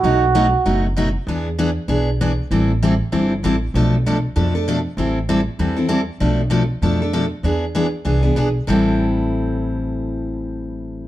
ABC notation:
X:1
M:4/4
L:1/8
Q:"Swing" 1/4=195
K:Am
V:1 name="Trombone"
^F4- F z3 | z8 | z8 | z8 |
z8 | z8 | z8 | z8 |
z8 |]
V:2 name="Steel-string acoustic guitar"
[B,,^F,A,^D^F] z [B,,F,A,DF] z [B,,F,A,DF] z [B,,F,A,DF] z | [E,B,D^G] z [E,B,DG] z [E,B,DG] z [E,B,DG] z | [E,G,CEA] z [E,G,CEA] z [E,G,CEA] z [E,G,CEA] z | [B,,F,A,DA] z [B,,F,A,DA] z [B,,F,A,DA] [A,DA] [B,,F,A,DA] z |
[E,G,CEA] z [E,G,CEA] z [E,G,CEA] [CEA] [E,G,CEA] z | [B,,F,A,DA] z [B,,F,A,DA] z [B,,F,A,DA] [A,DA] [B,,F,A,DA] z | [E,B,D^G] z [E,B,DG] z [E,B,DG] [B,DG] [E,B,DG] z | [A,,E,G,CEA]8- |
[A,,E,G,CEA]8 |]
V:3 name="Upright bass" clef=bass
B,,,4 ^F,,,4 | E,,4 B,,,4 | A,,,4 G,,,2 A,,,2 | B,,,4 F,,4 |
A,,,4 E,,4 | B,,,4 F,,4 | E,,4 C,,2 B,,,2 | A,,,8- |
A,,,8 |]